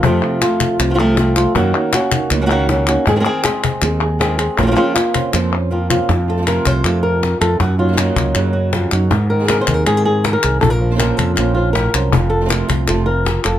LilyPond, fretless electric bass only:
\new Staff \with { instrumentName = "Fretless electric bass" } { \clef bass \time 4/4 \tempo 4 = 159 f,8 r4. c,2 | ges,8 r4. des,2 | aes,8 r4. ees,2 | bes,,8 r4. f,2 |
f,4. c,8 f,4. f,8 | ges,4. des,8 ges,4. ges,8 | aes,4. ees,8 aes,4. c,8 | bes,,4. f,8 bes,,4. c,8 |
f,,4. c,8 f,,4. f,,8 | }